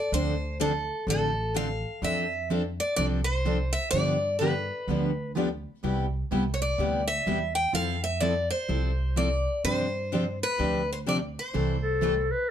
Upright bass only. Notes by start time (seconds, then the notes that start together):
0.12 D2
1.07 A1
2.02 F2
2.98 C2
3.93 G2
4.88 D2
5.84 C2
6.32 C2
6.78 D2
7.27 E2
7.74 F2
8.69 C2
9.64 G2
10.59 D2
11.55 C2